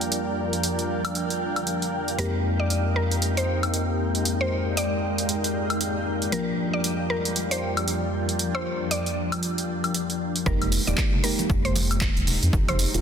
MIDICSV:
0, 0, Header, 1, 7, 480
1, 0, Start_track
1, 0, Tempo, 517241
1, 109, Time_signature, 4, 2, 24, 8
1, 12077, End_track
2, 0, Start_track
2, 0, Title_t, "Synth pluck"
2, 0, Program_c, 0, 84
2, 2028, Note_on_c, 0, 70, 97
2, 2272, Note_off_c, 0, 70, 0
2, 2409, Note_on_c, 0, 74, 92
2, 2653, Note_off_c, 0, 74, 0
2, 2748, Note_on_c, 0, 70, 92
2, 2992, Note_off_c, 0, 70, 0
2, 3131, Note_on_c, 0, 72, 92
2, 3279, Note_off_c, 0, 72, 0
2, 4091, Note_on_c, 0, 72, 94
2, 4333, Note_off_c, 0, 72, 0
2, 4428, Note_on_c, 0, 74, 85
2, 4605, Note_off_c, 0, 74, 0
2, 5868, Note_on_c, 0, 70, 98
2, 6112, Note_off_c, 0, 70, 0
2, 6251, Note_on_c, 0, 74, 93
2, 6493, Note_off_c, 0, 74, 0
2, 6589, Note_on_c, 0, 70, 90
2, 6832, Note_off_c, 0, 70, 0
2, 6971, Note_on_c, 0, 72, 88
2, 7118, Note_off_c, 0, 72, 0
2, 7932, Note_on_c, 0, 72, 95
2, 8174, Note_off_c, 0, 72, 0
2, 8269, Note_on_c, 0, 74, 89
2, 8446, Note_off_c, 0, 74, 0
2, 9709, Note_on_c, 0, 70, 104
2, 9952, Note_off_c, 0, 70, 0
2, 10090, Note_on_c, 0, 74, 94
2, 10333, Note_off_c, 0, 74, 0
2, 10427, Note_on_c, 0, 70, 94
2, 10672, Note_off_c, 0, 70, 0
2, 10810, Note_on_c, 0, 72, 94
2, 10958, Note_off_c, 0, 72, 0
2, 11772, Note_on_c, 0, 72, 100
2, 12014, Note_off_c, 0, 72, 0
2, 12077, End_track
3, 0, Start_track
3, 0, Title_t, "Analog synth pad"
3, 0, Program_c, 1, 89
3, 0, Note_on_c, 1, 41, 79
3, 0, Note_on_c, 1, 55, 74
3, 0, Note_on_c, 1, 65, 72
3, 0, Note_on_c, 1, 70, 73
3, 0, Note_on_c, 1, 74, 84
3, 1992, Note_off_c, 1, 70, 0
3, 1993, Note_off_c, 1, 41, 0
3, 1993, Note_off_c, 1, 55, 0
3, 1993, Note_off_c, 1, 74, 0
3, 2028, Note_on_c, 1, 67, 71
3, 2028, Note_on_c, 1, 70, 73
3, 2028, Note_on_c, 1, 75, 87
3, 2029, Note_on_c, 1, 56, 79
3, 3929, Note_off_c, 1, 75, 0
3, 3949, Note_on_c, 1, 74, 88
3, 5832, Note_off_c, 1, 56, 0
3, 5832, Note_off_c, 1, 65, 0
3, 5832, Note_off_c, 1, 67, 0
3, 5868, Note_on_c, 1, 65, 71
3, 5869, Note_on_c, 1, 41, 76
3, 5869, Note_on_c, 1, 55, 72
3, 9671, Note_off_c, 1, 65, 0
3, 9671, Note_off_c, 1, 70, 0
3, 9672, Note_off_c, 1, 41, 0
3, 9672, Note_off_c, 1, 55, 0
3, 9672, Note_off_c, 1, 74, 0
3, 12077, End_track
4, 0, Start_track
4, 0, Title_t, "Ambient pad"
4, 0, Program_c, 2, 92
4, 0, Note_on_c, 2, 53, 73
4, 0, Note_on_c, 2, 62, 70
4, 0, Note_on_c, 2, 70, 74
4, 0, Note_on_c, 2, 77, 80
4, 0, Note_on_c, 2, 79, 80
4, 2028, Note_on_c, 2, 63, 76
4, 2030, Note_off_c, 2, 53, 0
4, 2030, Note_off_c, 2, 62, 0
4, 2248, Note_on_c, 2, 56, 89
4, 5868, Note_off_c, 2, 63, 0
4, 5868, Note_on_c, 2, 53, 83
4, 5869, Note_off_c, 2, 56, 0
4, 6051, Note_on_c, 2, 62, 94
4, 9708, Note_on_c, 2, 63, 80
4, 9709, Note_off_c, 2, 53, 0
4, 9709, Note_off_c, 2, 62, 0
4, 9861, Note_on_c, 2, 56, 77
4, 9986, Note_on_c, 2, 82, 77
4, 10464, Note_off_c, 2, 77, 0
4, 10796, Note_off_c, 2, 70, 0
4, 12077, Note_off_c, 2, 56, 0
4, 12077, Note_off_c, 2, 63, 0
4, 12077, Note_off_c, 2, 79, 0
4, 12077, Note_off_c, 2, 82, 0
4, 12077, End_track
5, 0, Start_track
5, 0, Title_t, "FM electric piano"
5, 0, Program_c, 3, 5
5, 0, Note_on_c, 3, 53, 76
5, 0, Note_on_c, 3, 58, 68
5, 0, Note_on_c, 3, 62, 72
5, 0, Note_on_c, 3, 65, 67
5, 0, Note_on_c, 3, 67, 83
5, 2004, Note_off_c, 3, 53, 0
5, 2005, Note_off_c, 3, 58, 0
5, 2006, Note_off_c, 3, 62, 0
5, 2007, Note_off_c, 3, 65, 0
5, 2008, Note_off_c, 3, 67, 0
5, 2025, Note_on_c, 3, 41, 78
5, 2026, Note_on_c, 3, 56, 67
5, 2028, Note_on_c, 3, 58, 68
5, 2030, Note_on_c, 3, 60, 69
5, 2031, Note_on_c, 3, 63, 69
5, 2033, Note_on_c, 3, 67, 85
5, 5843, Note_off_c, 3, 41, 0
5, 5844, Note_off_c, 3, 56, 0
5, 5845, Note_off_c, 3, 58, 0
5, 5846, Note_off_c, 3, 60, 0
5, 5847, Note_off_c, 3, 63, 0
5, 5848, Note_off_c, 3, 67, 0
5, 5865, Note_on_c, 3, 53, 77
5, 5867, Note_on_c, 3, 58, 69
5, 5869, Note_on_c, 3, 62, 69
5, 5871, Note_on_c, 3, 65, 70
5, 5873, Note_on_c, 3, 67, 83
5, 9683, Note_off_c, 3, 53, 0
5, 9685, Note_off_c, 3, 58, 0
5, 9685, Note_off_c, 3, 62, 0
5, 9686, Note_off_c, 3, 65, 0
5, 9688, Note_off_c, 3, 67, 0
5, 9706, Note_on_c, 3, 56, 102
5, 9707, Note_on_c, 3, 58, 93
5, 9709, Note_on_c, 3, 63, 96
5, 9710, Note_on_c, 3, 67, 112
5, 10033, Note_off_c, 3, 56, 0
5, 10034, Note_off_c, 3, 58, 0
5, 10034, Note_off_c, 3, 63, 0
5, 10035, Note_off_c, 3, 67, 0
5, 10088, Note_on_c, 3, 56, 79
5, 10090, Note_on_c, 3, 58, 74
5, 10091, Note_on_c, 3, 63, 75
5, 10093, Note_on_c, 3, 67, 89
5, 10404, Note_off_c, 3, 56, 0
5, 10405, Note_off_c, 3, 58, 0
5, 10405, Note_off_c, 3, 63, 0
5, 10406, Note_off_c, 3, 67, 0
5, 10424, Note_on_c, 3, 56, 90
5, 10427, Note_on_c, 3, 58, 83
5, 10430, Note_on_c, 3, 63, 84
5, 10432, Note_on_c, 3, 67, 101
5, 11975, Note_off_c, 3, 56, 0
5, 11976, Note_off_c, 3, 58, 0
5, 11978, Note_off_c, 3, 63, 0
5, 11979, Note_off_c, 3, 67, 0
5, 12010, Note_on_c, 3, 56, 82
5, 12011, Note_on_c, 3, 58, 74
5, 12012, Note_on_c, 3, 63, 73
5, 12014, Note_on_c, 3, 65, 91
5, 12077, Note_off_c, 3, 56, 0
5, 12077, Note_off_c, 3, 58, 0
5, 12077, Note_off_c, 3, 63, 0
5, 12077, Note_off_c, 3, 65, 0
5, 12077, End_track
6, 0, Start_track
6, 0, Title_t, "Analog synth bass"
6, 0, Program_c, 4, 38
6, 9709, Note_on_c, 4, 29, 98
6, 10012, Note_off_c, 4, 29, 0
6, 10091, Note_on_c, 4, 27, 108
6, 10155, Note_off_c, 4, 27, 0
6, 10669, Note_on_c, 4, 29, 92
6, 11212, Note_off_c, 4, 29, 0
6, 11291, Note_on_c, 4, 27, 91
6, 11355, Note_off_c, 4, 27, 0
6, 11389, Note_on_c, 4, 27, 88
6, 11482, Note_off_c, 4, 27, 0
6, 11531, Note_on_c, 4, 41, 85
6, 11595, Note_off_c, 4, 41, 0
6, 11628, Note_on_c, 4, 29, 98
6, 11932, Note_off_c, 4, 29, 0
6, 12011, Note_on_c, 4, 27, 107
6, 12075, Note_off_c, 4, 27, 0
6, 12077, End_track
7, 0, Start_track
7, 0, Title_t, "Drums"
7, 12, Note_on_c, 9, 42, 35
7, 104, Note_off_c, 9, 42, 0
7, 109, Note_on_c, 9, 42, 77
7, 202, Note_off_c, 9, 42, 0
7, 492, Note_on_c, 9, 42, 32
7, 585, Note_off_c, 9, 42, 0
7, 589, Note_on_c, 9, 42, 73
7, 682, Note_off_c, 9, 42, 0
7, 731, Note_on_c, 9, 42, 34
7, 824, Note_off_c, 9, 42, 0
7, 971, Note_on_c, 9, 42, 47
7, 971, Note_on_c, 9, 76, 84
7, 1064, Note_off_c, 9, 42, 0
7, 1064, Note_off_c, 9, 76, 0
7, 1069, Note_on_c, 9, 42, 73
7, 1161, Note_off_c, 9, 42, 0
7, 1210, Note_on_c, 9, 42, 49
7, 1303, Note_off_c, 9, 42, 0
7, 1451, Note_on_c, 9, 42, 33
7, 1451, Note_on_c, 9, 76, 58
7, 1544, Note_off_c, 9, 42, 0
7, 1544, Note_off_c, 9, 76, 0
7, 1548, Note_on_c, 9, 42, 75
7, 1641, Note_off_c, 9, 42, 0
7, 1691, Note_on_c, 9, 42, 32
7, 1784, Note_off_c, 9, 42, 0
7, 1931, Note_on_c, 9, 42, 34
7, 2023, Note_off_c, 9, 42, 0
7, 2028, Note_on_c, 9, 42, 76
7, 2121, Note_off_c, 9, 42, 0
7, 2508, Note_on_c, 9, 42, 71
7, 2601, Note_off_c, 9, 42, 0
7, 2891, Note_on_c, 9, 42, 48
7, 2984, Note_off_c, 9, 42, 0
7, 2988, Note_on_c, 9, 42, 71
7, 3081, Note_off_c, 9, 42, 0
7, 3130, Note_on_c, 9, 42, 47
7, 3223, Note_off_c, 9, 42, 0
7, 3370, Note_on_c, 9, 42, 33
7, 3370, Note_on_c, 9, 76, 60
7, 3463, Note_off_c, 9, 42, 0
7, 3463, Note_off_c, 9, 76, 0
7, 3467, Note_on_c, 9, 42, 75
7, 3560, Note_off_c, 9, 42, 0
7, 3850, Note_on_c, 9, 42, 33
7, 3943, Note_off_c, 9, 42, 0
7, 3948, Note_on_c, 9, 42, 80
7, 4040, Note_off_c, 9, 42, 0
7, 4428, Note_on_c, 9, 42, 77
7, 4521, Note_off_c, 9, 42, 0
7, 4811, Note_on_c, 9, 42, 51
7, 4903, Note_off_c, 9, 42, 0
7, 4908, Note_on_c, 9, 42, 77
7, 5001, Note_off_c, 9, 42, 0
7, 5051, Note_on_c, 9, 42, 50
7, 5144, Note_off_c, 9, 42, 0
7, 5291, Note_on_c, 9, 42, 35
7, 5291, Note_on_c, 9, 76, 59
7, 5383, Note_off_c, 9, 42, 0
7, 5383, Note_off_c, 9, 76, 0
7, 5389, Note_on_c, 9, 42, 81
7, 5481, Note_off_c, 9, 42, 0
7, 5771, Note_on_c, 9, 42, 35
7, 5864, Note_off_c, 9, 42, 0
7, 5868, Note_on_c, 9, 42, 79
7, 5961, Note_off_c, 9, 42, 0
7, 6348, Note_on_c, 9, 42, 80
7, 6441, Note_off_c, 9, 42, 0
7, 6731, Note_on_c, 9, 42, 53
7, 6824, Note_off_c, 9, 42, 0
7, 6829, Note_on_c, 9, 42, 77
7, 6922, Note_off_c, 9, 42, 0
7, 6971, Note_on_c, 9, 42, 51
7, 7064, Note_off_c, 9, 42, 0
7, 7212, Note_on_c, 9, 42, 35
7, 7212, Note_on_c, 9, 76, 57
7, 7305, Note_off_c, 9, 42, 0
7, 7305, Note_off_c, 9, 76, 0
7, 7309, Note_on_c, 9, 42, 79
7, 7402, Note_off_c, 9, 42, 0
7, 7691, Note_on_c, 9, 42, 37
7, 7784, Note_off_c, 9, 42, 0
7, 7789, Note_on_c, 9, 42, 85
7, 7882, Note_off_c, 9, 42, 0
7, 7931, Note_on_c, 9, 76, 59
7, 8024, Note_off_c, 9, 76, 0
7, 8268, Note_on_c, 9, 42, 80
7, 8361, Note_off_c, 9, 42, 0
7, 8411, Note_on_c, 9, 42, 37
7, 8504, Note_off_c, 9, 42, 0
7, 8651, Note_on_c, 9, 42, 53
7, 8651, Note_on_c, 9, 76, 81
7, 8744, Note_off_c, 9, 42, 0
7, 8744, Note_off_c, 9, 76, 0
7, 8748, Note_on_c, 9, 42, 81
7, 8841, Note_off_c, 9, 42, 0
7, 8891, Note_on_c, 9, 42, 53
7, 8984, Note_off_c, 9, 42, 0
7, 9132, Note_on_c, 9, 42, 37
7, 9132, Note_on_c, 9, 76, 56
7, 9224, Note_off_c, 9, 42, 0
7, 9224, Note_off_c, 9, 76, 0
7, 9229, Note_on_c, 9, 42, 82
7, 9321, Note_off_c, 9, 42, 0
7, 9370, Note_on_c, 9, 42, 37
7, 9463, Note_off_c, 9, 42, 0
7, 9610, Note_on_c, 9, 42, 39
7, 9703, Note_off_c, 9, 42, 0
7, 9709, Note_on_c, 9, 36, 117
7, 9709, Note_on_c, 9, 62, 56
7, 9714, Note_on_c, 9, 82, 35
7, 9801, Note_off_c, 9, 36, 0
7, 9801, Note_off_c, 9, 62, 0
7, 9807, Note_off_c, 9, 82, 0
7, 9851, Note_on_c, 9, 42, 58
7, 9851, Note_on_c, 9, 63, 68
7, 9851, Note_on_c, 9, 76, 61
7, 9944, Note_off_c, 9, 42, 0
7, 9944, Note_off_c, 9, 63, 0
7, 9944, Note_off_c, 9, 76, 0
7, 9948, Note_on_c, 9, 46, 110
7, 9953, Note_on_c, 9, 82, 83
7, 10041, Note_off_c, 9, 46, 0
7, 10046, Note_off_c, 9, 82, 0
7, 10091, Note_on_c, 9, 42, 65
7, 10091, Note_on_c, 9, 62, 85
7, 10096, Note_on_c, 9, 82, 44
7, 10184, Note_off_c, 9, 42, 0
7, 10184, Note_off_c, 9, 62, 0
7, 10185, Note_on_c, 9, 39, 127
7, 10189, Note_off_c, 9, 82, 0
7, 10189, Note_on_c, 9, 36, 120
7, 10194, Note_on_c, 9, 82, 34
7, 10278, Note_off_c, 9, 39, 0
7, 10281, Note_off_c, 9, 36, 0
7, 10287, Note_off_c, 9, 82, 0
7, 10331, Note_on_c, 9, 64, 87
7, 10423, Note_off_c, 9, 64, 0
7, 10428, Note_on_c, 9, 46, 112
7, 10434, Note_on_c, 9, 82, 83
7, 10521, Note_off_c, 9, 46, 0
7, 10527, Note_off_c, 9, 82, 0
7, 10571, Note_on_c, 9, 42, 71
7, 10571, Note_on_c, 9, 62, 59
7, 10571, Note_on_c, 9, 63, 67
7, 10576, Note_on_c, 9, 82, 46
7, 10664, Note_off_c, 9, 42, 0
7, 10664, Note_off_c, 9, 62, 0
7, 10664, Note_off_c, 9, 63, 0
7, 10669, Note_off_c, 9, 82, 0
7, 10669, Note_on_c, 9, 36, 115
7, 10674, Note_on_c, 9, 82, 34
7, 10761, Note_off_c, 9, 36, 0
7, 10767, Note_off_c, 9, 82, 0
7, 10811, Note_on_c, 9, 42, 40
7, 10904, Note_off_c, 9, 42, 0
7, 10909, Note_on_c, 9, 46, 102
7, 10909, Note_on_c, 9, 62, 84
7, 10909, Note_on_c, 9, 63, 68
7, 10914, Note_on_c, 9, 82, 80
7, 11001, Note_off_c, 9, 62, 0
7, 11001, Note_off_c, 9, 63, 0
7, 11002, Note_off_c, 9, 46, 0
7, 11007, Note_off_c, 9, 82, 0
7, 11051, Note_on_c, 9, 42, 68
7, 11051, Note_on_c, 9, 76, 59
7, 11056, Note_on_c, 9, 82, 44
7, 11144, Note_off_c, 9, 42, 0
7, 11144, Note_off_c, 9, 76, 0
7, 11146, Note_on_c, 9, 39, 126
7, 11149, Note_off_c, 9, 82, 0
7, 11149, Note_on_c, 9, 36, 123
7, 11154, Note_on_c, 9, 82, 35
7, 11238, Note_off_c, 9, 39, 0
7, 11242, Note_off_c, 9, 36, 0
7, 11247, Note_off_c, 9, 82, 0
7, 11291, Note_on_c, 9, 42, 58
7, 11384, Note_off_c, 9, 42, 0
7, 11389, Note_on_c, 9, 46, 107
7, 11389, Note_on_c, 9, 62, 52
7, 11389, Note_on_c, 9, 64, 86
7, 11394, Note_on_c, 9, 82, 79
7, 11481, Note_off_c, 9, 62, 0
7, 11481, Note_off_c, 9, 64, 0
7, 11482, Note_off_c, 9, 46, 0
7, 11487, Note_off_c, 9, 82, 0
7, 11532, Note_on_c, 9, 42, 70
7, 11537, Note_on_c, 9, 82, 45
7, 11625, Note_off_c, 9, 42, 0
7, 11629, Note_on_c, 9, 36, 124
7, 11630, Note_off_c, 9, 82, 0
7, 11635, Note_on_c, 9, 82, 34
7, 11722, Note_off_c, 9, 36, 0
7, 11727, Note_off_c, 9, 82, 0
7, 11771, Note_on_c, 9, 42, 58
7, 11771, Note_on_c, 9, 62, 81
7, 11771, Note_on_c, 9, 63, 69
7, 11771, Note_on_c, 9, 76, 62
7, 11864, Note_off_c, 9, 42, 0
7, 11864, Note_off_c, 9, 62, 0
7, 11864, Note_off_c, 9, 63, 0
7, 11864, Note_off_c, 9, 76, 0
7, 11869, Note_on_c, 9, 46, 114
7, 11874, Note_on_c, 9, 82, 77
7, 11962, Note_off_c, 9, 46, 0
7, 11967, Note_off_c, 9, 82, 0
7, 12012, Note_on_c, 9, 42, 68
7, 12017, Note_on_c, 9, 82, 45
7, 12077, Note_off_c, 9, 42, 0
7, 12077, Note_off_c, 9, 82, 0
7, 12077, End_track
0, 0, End_of_file